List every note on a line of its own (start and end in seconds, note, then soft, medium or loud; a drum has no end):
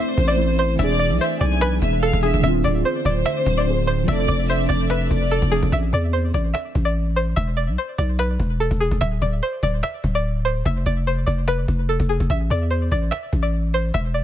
0.00 0.33 A3 medium
0.00 0.77 A3 medium
0.00 0.75 C4 medium
0.00 0.35 E4 medium
0.00 0.78 E4 medium
0.00 0.38 C5 medium
0.00 0.75 C5 loud
0.00 0.26 E5 medium
0.11 cajon slap soft
0.17 0.77 A1 loud
0.17 cajon bass loud
0.28 0.56 D5 medium
0.36 0.78 A3 medium
0.36 0.79 E4 soft
0.36 cajon slap soft
0.40 0.80 C5 medium
0.49 cajon slap soft
0.59 0.75 C5 medium
0.59 cajon slap soft
0.75 2.18 E3 medium
0.75 0.95 E5 loud
0.79 1.12 E1 loud
0.79 2.42 E3 medium
0.79 2.42 B3 medium
0.79 2.42 D4 medium
0.79 2.20 D4 medium
0.79 2.42 G#4 medium
0.79 1.18 D5 loud
0.79 cajon bass loud
0.83 2.22 G#4 medium
0.99 1.16 D5 medium
0.99 cajon slap soft
1.11 1.20 B1 loud
1.20 1.37 C5 medium
1.20 1.40 E5 medium
1.20 cajon slap soft
1.41 1.80 B1 loud
1.41 1.57 D5 medium
1.41 1.80 G#5 medium
1.41 cajon bass loud
1.61 2.00 B4 medium
1.61 cajon slap loud
1.75 cajon slap soft
1.82 2.12 E1 loud
1.82 2.01 E5 medium
1.82 cajon bass loud
2.02 2.19 A4 medium
2.02 2.22 F5 medium
2.02 cajon slap soft
2.13 2.33 E1 loud
2.13 cajon bass loud
2.22 2.43 E3 medium
2.22 2.44 D4 soft
2.22 2.39 G#4 medium
2.22 2.43 E5 medium
2.26 2.45 G#4 medium
2.34 2.43 E1 loud
2.34 cajon bass medium
2.39 3.62 D3 medium
2.43 2.63 D1 loud
2.43 4.06 D3 medium
2.43 4.06 A3 medium
2.43 3.64 C4 medium
2.43 5.69 C4 medium
2.43 4.06 F4 medium
2.43 2.60 E5 loud
2.43 cajon bass loud
2.47 3.66 F4 medium
2.64 2.84 D1 loud
2.64 2.81 D5 medium
2.64 cajon bass loud
2.84 4.04 C5 loud
2.84 3.01 C5 medium
2.84 cajon slap soft
3.05 3.25 D1 loud
3.05 3.22 D5 medium
3.05 cajon bass loud
3.16 cajon slap soft
3.21 cajon slap soft
3.25 3.55 E5 loud
3.25 cajon slap loud
3.39 cajon slap soft
3.46 4.05 D1 loud
3.46 cajon bass loud
3.53 cajon slap soft
3.58 3.86 D5 medium
3.65 4.07 D3 medium
3.65 4.08 C4 soft
3.65 cajon slap soft
3.69 4.09 G#4 medium
3.78 cajon slap soft
3.87 4.04 C5 medium
3.87 cajon slap soft
4.03 5.47 F3 medium
4.08 4.28 F1 loud
4.08 5.71 F3 medium
4.08 5.49 D4 medium
4.08 5.71 D4 medium
4.08 5.71 A4 medium
4.08 4.47 D5 loud
4.08 4.25 E5 loud
4.08 cajon bass loud
4.12 5.51 A4 medium
4.28 4.68 F1 loud
4.28 4.45 D5 medium
4.28 cajon bass loud
4.49 4.66 C5 medium
4.49 4.68 E5 medium
4.49 cajon slap soft
4.69 5.09 F1 loud
4.69 4.85 D5 medium
4.69 4.89 D5 medium
4.69 cajon bass loud
4.90 5.29 B4 medium
4.90 5.10 E5 medium
4.90 cajon slap loud
5.04 cajon slap soft
5.11 5.41 F1 loud
5.11 5.69 D5 medium
5.11 cajon bass loud
5.24 cajon slap soft
5.31 5.48 A4 medium
5.31 cajon slap soft
5.42 5.62 F1 loud
5.42 cajon bass loud
5.51 5.72 F3 medium
5.51 5.73 D4 soft
5.51 5.68 G#4 medium
5.55 5.74 A4 medium
5.63 5.72 F1 loud
5.63 cajon bass medium
5.72 5.92 A1 loud
5.72 5.89 E5 loud
5.72 cajon bass loud
5.93 6.32 E2 loud
5.93 6.10 D5 medium
5.93 cajon bass medium
6.13 6.30 C5 medium
6.34 6.54 A1 loud
6.34 6.51 D5 medium
6.34 cajon bass medium
6.54 6.84 E5 medium
6.54 cajon slap loud
6.75 7.34 A1 loud
6.75 cajon bass loud
6.85 7.14 D5 medium
7.16 7.33 C5 medium
7.36 7.70 E1 loud
7.36 7.53 E5 loud
7.36 cajon bass loud
7.57 7.73 D5 medium
7.68 7.77 B1 loud
7.78 7.94 C5 medium
7.98 8.38 B1 loud
7.98 8.15 D5 medium
7.98 cajon bass loud
8.19 8.58 B4 medium
8.19 cajon slap loud
8.40 8.70 E1 loud
8.40 cajon bass loud
8.60 8.76 A4 medium
8.71 8.91 E1 loud
8.71 cajon bass loud
8.80 8.97 G#4 medium
8.91 9.01 E1 loud
8.91 cajon bass medium
9.01 9.21 D1 loud
9.01 9.17 E5 loud
9.01 cajon bass loud
9.22 9.41 D1 loud
9.22 9.38 D5 medium
9.22 cajon bass medium
9.43 9.59 C5 medium
9.63 9.82 D1 loud
9.63 9.79 D5 medium
9.63 cajon bass medium
9.83 10.13 E5 medium
9.83 cajon slap loud
10.04 10.63 D1 loud
10.04 cajon bass loud
10.15 10.43 D5 medium
10.45 10.61 C5 medium
10.65 10.85 F1 loud
10.65 10.82 E5 loud
10.65 cajon bass loud
10.86 11.25 F1 loud
10.86 11.03 D5 medium
10.86 cajon bass medium
11.07 11.23 C5 medium
11.26 11.67 F1 loud
11.26 11.43 D5 medium
11.26 cajon bass medium
11.48 11.86 B4 medium
11.48 cajon slap loud
11.68 11.98 F1 loud
11.68 cajon bass loud
11.89 12.05 A4 medium
12.00 12.19 F1 loud
12.00 cajon bass loud
12.09 12.26 G#4 medium
12.20 12.29 F1 loud
12.20 cajon bass medium
12.30 12.50 A1 loud
12.30 12.47 E5 loud
12.30 cajon bass loud
12.50 12.90 E2 loud
12.50 12.67 D5 medium
12.50 cajon bass loud
12.71 12.87 C5 medium
12.71 cajon slap soft
12.91 13.11 A1 loud
12.91 13.08 D5 medium
12.91 cajon bass medium
13.07 13.41 E5 medium
13.07 cajon slap soft
13.12 cajon slap loud
13.19 cajon slap soft
13.26 cajon slap soft
13.33 13.92 A1 loud
13.33 cajon bass loud
13.43 13.71 D5 medium
13.43 cajon slap soft
13.53 cajon slap soft
13.64 cajon slap soft
13.74 13.90 C5 medium
13.74 cajon slap soft
13.94 14.24 E1 loud
13.94 14.10 E5 loud
13.94 cajon bass loud
14.14 14.24 D5 medium
14.14 cajon slap soft